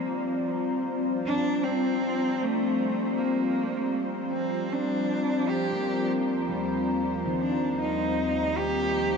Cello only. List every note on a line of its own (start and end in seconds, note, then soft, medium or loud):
1.27 1.66 D4 medium
1.64 2.44 C4 medium
2.42 3.19 A3 medium
3.17 3.94 A#3 medium
4.33 4.74 C4 medium
4.73 5.51 D4 medium
5.49 6.06 G4 medium
7.41 7.76 D4 medium
7.81 8.59 D#4 medium
8.57 9.17 G4 medium